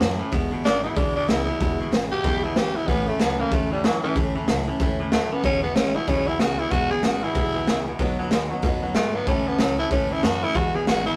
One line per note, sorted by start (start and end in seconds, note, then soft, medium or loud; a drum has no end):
0.00 0.20 F#2 medium
0.00 0.17 A2 medium
0.00 0.19 E3 medium
0.00 0.18 F#3 medium
0.00 0.20 A3 medium
0.00 0.20 C#4 medium
0.00 0.18 E4 medium
0.00 snare loud
0.00 open hi-hat soft
0.19 0.31 A2 medium
0.19 0.31 E3 medium
0.19 0.33 A3 soft
0.19 0.33 C#4 medium
0.19 0.32 E4 medium
0.32 0.52 E1 loud
0.32 0.51 E2 loud
0.32 0.49 E2 medium
0.32 0.51 B2 loud
0.32 0.50 B2 loud
0.32 0.51 E3 loud
0.32 0.52 G#3 loud
0.32 0.51 B3 loud
0.32 0.50 E4 loud
0.32 kick loud
0.32 open hi-hat soft
0.51 0.63 E2 medium
0.51 0.63 B2 medium
0.51 0.62 E3 medium
0.51 0.63 G#3 medium
0.51 0.65 B3 medium
0.51 0.64 E4 medium
0.64 0.85 G#1 loud
0.64 0.82 E2 medium
0.64 0.82 C#3 medium
0.64 0.83 E3 medium
0.64 0.83 G#3 medium
0.64 0.83 B3 medium
0.64 0.83 D4 loud
0.64 0.82 E4 medium
0.64 snare loud
0.64 open hi-hat medium
0.83 0.95 E2 medium
0.83 0.96 B2 medium
0.83 0.96 E3 soft
0.83 0.96 G#3 medium
0.83 0.96 B3 medium
0.83 0.96 E4 medium
0.83 0.98 E4 medium
0.96 1.16 B1 medium
0.96 1.15 E2 medium
0.96 1.14 E2 medium
0.96 1.16 B2 medium
0.96 1.14 B2 medium
0.96 1.16 E3 medium
0.96 1.16 G#3 medium
0.96 1.15 B3 medium
0.96 1.15 D4 medium
0.96 1.14 E4 medium
0.96 kick loud
0.96 open hi-hat medium
1.15 1.27 E2 medium
1.15 1.27 B2 loud
1.15 1.26 E3 soft
1.15 1.28 G#3 soft
1.15 1.29 B3 soft
1.15 1.30 D4 loud
1.15 1.28 E4 medium
1.28 1.48 C#2 medium
1.28 1.46 E2 medium
1.28 1.46 C#3 medium
1.28 1.47 E3 medium
1.28 1.48 G#3 medium
1.28 1.47 B3 medium
1.28 1.90 E4 loud
1.28 1.46 E4 medium
1.28 snare loud
1.28 open hi-hat medium
1.47 1.59 E2 medium
1.47 1.59 B2 medium
1.47 1.60 E3 soft
1.47 1.60 G#3 soft
1.47 1.61 B3 medium
1.47 1.60 E4 medium
1.61 1.80 E1 loud
1.61 1.80 E2 medium
1.61 1.78 E2 medium
1.61 1.80 B2 medium
1.61 1.78 B2 loud
1.61 1.80 E3 medium
1.61 1.80 G#3 medium
1.61 1.80 B3 medium
1.61 1.79 E4 loud
1.61 kick loud
1.61 open hi-hat medium
1.80 1.91 E2 medium
1.80 1.91 B2 medium
1.80 1.91 E3 soft
1.80 1.92 G#3 medium
1.80 1.93 B3 medium
1.80 1.93 E4 medium
1.92 2.11 G#1 loud
1.92 2.10 E2 medium
1.92 2.10 C#3 medium
1.92 2.11 E3 medium
1.92 2.12 G#3 medium
1.92 2.12 B3 medium
1.92 2.10 E4 medium
1.92 snare loud
1.92 open hi-hat medium
2.12 2.23 E2 medium
2.12 2.24 B2 medium
2.12 2.24 E3 soft
2.12 2.25 G#3 medium
2.12 2.25 B3 medium
2.12 2.24 E4 medium
2.12 2.45 G4 loud
2.24 2.44 B1 medium
2.24 2.43 E2 medium
2.24 2.42 E2 medium
2.24 2.44 B2 medium
2.24 2.42 B2 loud
2.24 2.44 E3 medium
2.24 2.44 G#3 medium
2.24 2.44 B3 medium
2.24 2.43 E4 medium
2.24 kick loud
2.24 open hi-hat medium
2.44 2.55 E2 medium
2.44 2.56 B2 medium
2.44 2.56 E3 soft
2.44 2.57 G#3 soft
2.44 2.57 B3 medium
2.44 2.59 E4 medium
2.44 2.56 E4 medium
2.56 2.76 G#1 medium
2.56 2.74 E2 medium
2.56 2.74 C#3 medium
2.56 2.76 E3 medium
2.56 2.76 G#3 medium
2.56 2.78 G4 medium
2.56 snare loud
2.56 open hi-hat soft
2.61 2.76 E4 medium
2.76 2.87 E2 medium
2.76 2.88 B2 medium
2.76 2.88 E3 soft
2.76 2.90 G#3 medium
2.76 2.89 B3 soft
2.76 2.89 E4 medium
2.87 3.08 A1 loud
2.87 3.06 A2 loud
2.87 3.08 A2 medium
2.87 3.08 E3 medium
2.87 3.06 E3 loud
2.87 3.09 A3 medium
2.87 3.10 B3 loud
2.87 3.08 C#4 loud
2.87 kick loud
2.87 open hi-hat medium
2.91 3.06 E4 medium
3.07 3.19 A2 medium
3.07 3.19 E3 medium
3.07 3.20 A3 medium
3.07 3.20 A3 soft
3.07 3.21 C#4 medium
3.07 3.20 E4 medium
3.20 3.40 C#2 loud
3.20 3.37 A2 medium
3.20 3.39 E3 medium
3.20 3.38 F#3 medium
3.20 3.40 A3 medium
3.20 3.41 B3 medium
3.20 3.40 C#4 medium
3.20 3.38 E4 medium
3.20 snare loud
3.20 open hi-hat medium
3.39 3.50 A2 medium
3.39 3.51 E3 medium
3.39 3.51 A3 medium
3.39 3.55 A#3 medium
3.39 3.52 C#4 medium
3.39 3.52 E4 medium
3.51 3.71 E2 medium
3.51 3.71 A2 medium
3.51 3.69 A2 medium
3.51 3.71 E3 medium
3.51 3.70 E3 loud
3.51 3.71 A3 medium
3.51 3.72 A3 medium
3.51 3.71 C#4 medium
3.51 3.69 E4 medium
3.51 kick loud
3.51 open hi-hat medium
3.70 3.83 A2 medium
3.70 3.83 E3 medium
3.70 3.87 G3 medium
3.70 3.83 A3 soft
3.70 3.84 C#4 soft
3.70 3.84 E4 medium
3.83 4.03 F#2 medium
3.83 4.01 A2 medium
3.83 4.03 E3 medium
3.83 4.02 F#3 medium
3.83 4.03 A3 medium
3.83 4.03 C#4 medium
3.83 4.01 E4 medium
3.83 snare loud
3.83 open hi-hat medium
4.02 4.14 A2 medium
4.02 4.16 E3 loud
4.02 4.15 E3 medium
4.02 4.16 A3 soft
4.02 4.16 C#4 medium
4.02 4.15 E4 medium
4.16 4.35 A1 loud
4.16 4.35 A2 medium
4.16 4.33 A2 medium
4.16 4.33 E3 loud
4.16 4.35 E3 medium
4.16 4.35 A3 loud
4.16 4.36 C#4 medium
4.16 4.34 E4 loud
4.16 kick loud
4.16 open hi-hat medium
4.35 4.47 A2 medium
4.35 4.47 E3 medium
4.35 4.48 A3 medium
4.35 4.49 C#4 medium
4.35 4.48 E4 medium
4.48 4.68 C#2 loud
4.48 4.66 A2 medium
4.48 4.67 E3 medium
4.48 4.66 F#3 medium
4.48 4.68 A3 medium
4.48 4.68 C#4 medium
4.48 4.66 E4 medium
4.48 snare loud
4.48 open hi-hat medium
4.67 4.79 A2 medium
4.67 4.79 E3 loud
4.67 4.80 A3 medium
4.67 4.80 C#4 medium
4.67 4.80 E4 medium
4.80 4.99 E2 medium
4.80 4.99 A2 medium
4.80 4.98 A2 medium
4.80 4.99 E3 loud
4.80 4.98 E3 loud
4.80 5.00 A3 loud
4.80 4.99 C#4 loud
4.80 4.97 E4 loud
4.80 kick loud
4.80 open hi-hat medium
4.99 5.11 A2 medium
4.99 5.11 E3 loud
4.99 5.12 A3 soft
4.99 5.13 C#4 medium
4.99 5.12 E4 medium
5.12 5.31 D#2 medium
5.12 5.29 A2 medium
5.12 5.31 E3 medium
5.12 5.29 F#3 medium
5.12 5.35 A3 medium
5.12 5.31 A3 medium
5.12 5.31 C#4 medium
5.12 5.29 E4 medium
5.12 snare loud
5.12 open hi-hat medium
5.31 5.43 A2 medium
5.31 5.43 E3 loud
5.31 5.45 A3 soft
5.31 5.44 B3 medium
5.31 5.44 C#4 medium
5.31 5.44 E4 medium
5.43 5.63 E1 loud
5.43 5.61 E2 medium
5.43 5.63 E2 medium
5.43 5.61 B2 loud
5.43 5.63 B2 loud
5.43 5.64 E3 loud
5.43 5.64 G#3 medium
5.43 5.64 B3 medium
5.43 5.63 C#4 loud
5.43 5.62 E4 medium
5.43 5.55 B4 loud
5.43 5.55 E5 medium
5.43 5.56 G#5 loud
5.43 kick loud
5.43 open hi-hat soft
5.62 5.75 E2 medium
5.62 5.75 B2 medium
5.62 5.77 B3 medium
5.62 5.76 E4 medium
5.62 5.70 B4 medium
5.62 5.70 E5 medium
5.62 5.70 G#5 medium
5.66 5.75 E3 soft
5.66 5.77 G#3 medium
5.75 5.96 G#1 loud
5.75 5.93 E2 medium
5.75 5.93 C#3 medium
5.75 5.95 E3 medium
5.75 5.96 G#3 medium
5.75 5.97 C#4 loud
5.75 5.87 B4 medium
5.75 5.87 E5 medium
5.75 5.87 G#5 medium
5.75 snare loud
5.75 open hi-hat medium
5.79 5.94 B3 medium
5.79 5.93 E4 medium
5.94 6.06 E2 medium
5.94 6.07 B2 loud
5.94 6.08 G#3 medium
5.94 6.08 B3 medium
5.94 6.07 E4 medium
5.94 6.10 E4 medium
5.94 6.02 B4 medium
5.94 6.03 E5 medium
5.94 6.03 G#5 medium
5.98 6.08 E3 medium
6.07 6.27 B1 medium
6.07 6.27 E2 medium
6.07 6.25 E2 medium
6.07 6.27 B2 loud
6.07 6.25 B2 loud
6.07 6.27 E3 medium
6.07 6.28 G#3 medium
6.07 6.27 B3 medium
6.07 6.29 C#4 loud
6.07 6.26 E4 loud
6.07 6.20 B4 medium
6.07 6.20 E5 medium
6.07 6.20 G#5 medium
6.07 kick loud
6.07 open hi-hat medium
6.27 6.38 E2 medium
6.27 6.39 B2 loud
6.27 6.39 E3 soft
6.27 6.40 G#3 medium
6.27 6.41 B3 medium
6.27 6.41 E4 medium
6.27 6.40 E4 medium
6.27 6.35 B4 loud
6.27 6.35 E5 medium
6.27 6.36 G#5 loud
6.39 6.59 C#2 medium
6.39 6.57 E2 medium
6.39 6.57 C#3 loud
6.39 6.59 E3 medium
6.39 6.59 G#3 medium
6.39 6.58 B3 medium
6.39 6.60 F#4 medium
6.39 6.51 B4 medium
6.39 6.51 E5 medium
6.39 6.52 G#5 medium
6.39 snare loud
6.39 open hi-hat soft
6.43 6.57 E4 medium
6.58 6.71 E2 medium
6.58 6.71 B2 medium
6.58 6.72 E3 soft
6.58 6.72 G#3 soft
6.58 6.72 B3 medium
6.58 6.72 E4 medium
6.58 6.72 E4 loud
6.58 6.66 B4 medium
6.58 6.67 E5 medium
6.58 6.67 G#5 medium
6.69 6.91 E1 loud
6.69 6.91 E2 medium
6.69 6.91 B2 medium
6.69 6.91 E3 medium
6.69 6.92 F#4 loud
6.69 6.82 B4 loud
6.69 6.82 E5 medium
6.69 6.83 G#5 loud
6.69 kick loud
6.69 open hi-hat medium
6.73 6.90 E2 loud
6.73 6.90 B2 loud
6.73 6.92 G#3 medium
6.73 6.90 B3 loud
6.73 6.89 E4 medium
6.89 7.03 E2 medium
6.89 7.03 B2 medium
6.89 7.04 B3 medium
6.89 7.03 E4 medium
6.89 7.06 G#4 medium
6.89 6.97 B4 medium
6.89 6.98 E5 medium
6.89 6.98 G#5 medium
6.93 7.01 E3 soft
6.93 7.03 G#3 medium
7.03 7.23 G#1 loud
7.03 7.22 E2 medium
7.03 7.21 C#3 medium
7.03 7.22 E3 medium
7.03 7.23 G#3 medium
7.03 7.21 B3 medium
7.03 7.20 E4 medium
7.03 7.25 F#4 medium
7.03 7.15 B4 medium
7.03 7.15 E5 medium
7.03 7.15 G#5 medium
7.03 snare loud
7.03 open hi-hat medium
7.21 7.34 E2 medium
7.21 7.35 B2 loud
7.21 7.35 E3 soft
7.21 7.35 G#3 medium
7.21 7.35 B3 medium
7.21 7.35 E4 medium
7.21 7.85 E4 loud
7.21 7.30 B4 medium
7.21 7.31 E5 medium
7.21 7.31 G#5 medium
7.35 7.55 B1 medium
7.35 7.54 E2 medium
7.35 7.53 E2 medium
7.35 7.55 B2 medium
7.35 7.54 B2 medium
7.35 7.55 E3 medium
7.35 7.55 G#3 loud
7.35 7.54 B3 medium
7.35 7.53 E4 medium
7.35 7.47 B4 medium
7.35 7.47 E5 medium
7.35 7.48 G#5 medium
7.35 kick loud
7.35 open hi-hat medium
7.54 7.66 E2 medium
7.54 7.67 B2 medium
7.54 7.67 E3 soft
7.54 7.68 G#3 soft
7.54 7.68 B3 medium
7.54 7.62 B4 loud
7.54 7.62 E5 medium
7.54 7.62 G#5 loud
7.66 7.87 C#2 medium
7.66 7.86 E2 medium
7.66 7.86 C#3 loud
7.66 7.87 E3 medium
7.66 7.87 G#3 medium
7.66 7.87 B3 medium
7.66 7.78 B4 loud
7.66 7.79 E5 loud
7.66 7.79 G#5 loud
7.66 snare loud
7.66 open hi-hat soft
7.71 7.85 E4 medium
7.85 7.98 E2 medium
7.85 7.98 B2 medium
7.85 8.00 G#3 soft
7.85 8.00 B3 medium
7.85 7.99 E4 medium
7.85 7.94 B4 medium
7.85 7.94 E5 medium
7.85 7.95 G#5 loud
7.90 8.00 E3 soft
7.99 8.19 B1 loud
7.99 8.19 B2 medium
7.99 8.17 B2 loud
7.99 8.19 F#3 medium
7.99 8.17 F#3 loud
7.99 8.19 B3 loud
7.99 8.20 D#4 loud
7.99 8.18 F#4 loud
7.99 8.11 B4 loud
7.99 8.11 D#5 loud
7.99 8.12 F#5 loud
7.99 kick loud
7.99 open hi-hat soft
8.19 8.30 B2 medium
8.19 8.30 F#3 loud
8.19 8.33 D#4 medium
8.19 8.32 F#4 medium
8.19 8.26 B4 medium
8.19 8.27 D#5 medium
8.19 8.27 F#5 loud
8.23 8.32 B3 medium
8.31 8.51 D#2 loud
8.31 8.49 B2 medium
8.31 8.51 F#3 medium
8.31 8.49 G#3 medium
8.31 8.52 B3 medium
8.31 8.51 D#4 medium
8.31 8.43 B4 medium
8.31 8.44 D#5 medium
8.31 8.44 F#5 loud
8.31 snare loud
8.31 open hi-hat medium
8.35 8.50 F#4 medium
8.50 8.62 B2 medium
8.50 8.62 F#3 medium
8.50 8.64 D#4 medium
8.50 8.64 F#4 medium
8.50 8.58 B4 medium
8.50 8.59 D#5 medium
8.50 8.59 F#5 loud
8.54 8.64 B3 medium
8.62 8.83 F#2 medium
8.62 8.81 B2 medium
8.62 8.83 B2 loud
8.62 8.81 F#3 medium
8.62 8.83 F#3 medium
8.62 8.84 B3 medium
8.62 8.84 D#4 loud
8.62 8.82 F#4 loud
8.62 8.75 B4 medium
8.62 8.75 D#5 medium
8.62 8.76 F#5 loud
8.62 kick loud
8.62 open hi-hat medium
8.82 8.94 B2 medium
8.82 8.94 F#3 medium
8.82 8.96 D#4 medium
8.82 8.96 F#4 medium
8.82 8.90 B4 loud
8.82 8.90 D#5 loud
8.82 8.91 F#5 loud
8.87 8.95 B3 soft
8.95 9.15 G#2 loud
8.95 9.13 B2 medium
8.95 9.14 F#3 medium
8.95 9.13 G#3 medium
8.95 9.17 A3 loud
8.95 9.15 B3 medium
8.95 9.15 D#4 medium
8.95 9.07 B4 medium
8.95 9.07 F#5 loud
8.95 snare loud
8.95 open hi-hat soft
8.99 9.13 F#4 medium
9.14 9.26 B2 medium
9.14 9.26 F#3 medium
9.14 9.30 B3 loud
9.14 9.28 B3 soft
9.14 9.28 D#4 medium
9.14 9.27 F#4 medium
9.14 9.22 B4 medium
9.14 9.23 F#5 medium
9.27 9.47 A1 loud
9.27 9.47 A2 medium
9.27 9.45 A2 medium
9.27 9.47 E3 medium
9.27 9.45 E3 loud
9.27 9.47 A3 medium
9.27 9.49 C#4 loud
9.27 9.46 C#4 medium
9.27 9.45 E4 loud
9.27 9.39 C#5 loud
9.27 9.39 E5 medium
9.27 9.39 A5 loud
9.27 kick loud
9.27 open hi-hat medium
9.46 9.58 A2 medium
9.46 9.59 E3 medium
9.46 9.59 A3 soft
9.46 9.62 B3 medium
9.46 9.60 C#4 medium
9.46 9.59 E4 medium
9.46 9.55 C#5 medium
9.46 9.55 E5 medium
9.46 9.55 A5 medium
9.59 9.79 C#2 loud
9.59 9.76 A2 medium
9.59 9.78 E3 medium
9.59 9.77 F#3 loud
9.59 9.79 A3 medium
9.59 9.79 C#4 loud
9.59 9.79 C#4 medium
9.59 9.77 E4 medium
9.59 9.71 E5 medium
9.59 9.72 A5 medium
9.59 snare loud
9.59 open hi-hat medium
9.78 9.90 A2 medium
9.78 9.90 E3 medium
9.78 9.91 A3 soft
9.78 9.92 C#4 medium
9.78 9.91 E4 medium
9.78 9.91 E4 loud
9.78 9.86 C#5 medium
9.78 9.86 E5 medium
9.78 9.87 A5 medium
9.91 10.11 E2 medium
9.91 10.09 A2 medium
9.91 10.11 A2 medium
9.91 10.09 E3 medium
9.91 10.11 E3 medium
9.91 10.11 A3 medium
9.91 10.14 C#4 medium
9.91 10.10 C#4 medium
9.91 10.08 E4 medium
9.91 10.03 C#5 medium
9.91 10.03 E5 medium
9.91 10.03 A5 medium
9.91 kick loud
9.91 open hi-hat medium
10.09 10.22 A2 medium
10.09 10.22 E3 medium
10.09 10.23 A3 soft
10.09 10.24 C#4 medium
10.09 10.23 E4 medium
10.09 10.25 E4 loud
10.09 10.18 C#5 medium
10.09 10.19 E5 medium
10.09 10.19 A5 loud
10.23 10.43 F#2 loud
10.23 10.41 A2 medium
10.23 10.42 E3 medium
10.23 10.41 F#3 loud
10.23 10.43 A3 medium
10.23 10.43 C#4 medium
10.23 10.41 E4 medium
10.23 10.45 F#4 loud
10.23 10.35 C#5 medium
10.23 10.36 E5 medium
10.23 10.36 A5 loud
10.23 snare loud
10.23 open hi-hat medium
10.42 10.54 A2 medium
10.42 10.54 E3 medium
10.42 10.56 A3 soft
10.42 10.56 C#4 soft
10.42 10.55 E4 medium
10.42 10.58 E4 loud
10.42 10.50 C#5 medium
10.42 10.50 E5 medium
10.42 10.51 A5 medium
10.54 10.75 E1 loud
10.54 10.74 E2 medium
10.54 10.72 E2 medium
10.54 10.75 B2 medium
10.54 10.73 B2 loud
10.54 10.75 E3 medium
10.54 10.74 G#3 medium
10.54 10.74 B3 medium
10.54 10.72 E4 medium
10.54 10.77 F#4 loud
10.54 10.66 B4 medium
10.54 10.67 E5 medium
10.54 10.67 G#5 loud
10.54 kick loud
10.54 open hi-hat soft
10.74 10.86 E2 medium
10.74 10.87 B2 medium
10.74 10.86 E3 soft
10.74 10.87 G#3 medium
10.74 10.88 B3 medium
10.74 10.87 E4 medium
10.74 10.87 G#4 medium
10.74 10.82 B4 medium
10.74 10.83 E5 medium
10.74 10.83 G#5 medium
10.87 11.07 G#1 loud
10.87 11.05 E2 medium
10.87 11.05 C#3 medium
10.87 11.07 E3 medium
10.87 11.07 G#3 medium
10.87 11.06 B3 medium
10.87 11.05 E4 medium
10.87 11.06 F#4 loud
10.87 10.99 B4 medium
10.87 10.99 E5 medium
10.87 10.99 G#5 medium
10.87 snare loud
10.87 open hi-hat medium
11.06 11.16 E2 medium
11.06 11.16 B2 medium
11.06 11.16 E3 medium
11.06 11.16 G#3 medium
11.06 11.16 B3 medium
11.06 11.16 E4 medium
11.06 11.16 E4 loud
11.06 11.14 B4 medium
11.06 11.14 E5 medium
11.06 11.15 G#5 medium